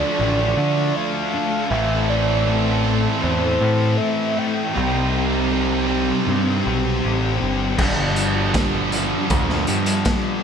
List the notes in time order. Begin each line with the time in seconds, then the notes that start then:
Already playing: D3 F3 A3 D4 D5
0.19 A1 D3 A3 D4
0.57 D3 A3 D4
0.96 F5
1.33 A3 D4
1.70 A1 A2 E3 A3 C4 E5
1.74 E4
2.09 D5
2.46 A2 E3 A3
2.85 A2 E3 A3
3.21 E2 A2 E3 C5
3.25 A3
3.60 A2 E3 A3
3.97 E5
4.36 E3 A3 G5
4.73 C2 C3 G3 C4 D#4
4.77 C4
5.50 C3 G3 C4
5.88 C3 G3 C4
6.25 G2 C3 G3 C4
6.64 B1 G3 C4
7.05 A1
7.40 G1 G3 C4
7.77 G1 G2 D3 F3 G3 B3 D4, kick, crash
8.16 closed hi-hat
8.53 G2 D3 G3, kick, snare, closed hi-hat
8.92 G2 D3 G3, closed hi-hat
9.29 D2 G2 D3 G3, kick, closed hi-hat
9.49 snare
9.67 G2 D3 G3, closed hi-hat
9.86 closed hi-hat
10.05 kick, snare, closed hi-hat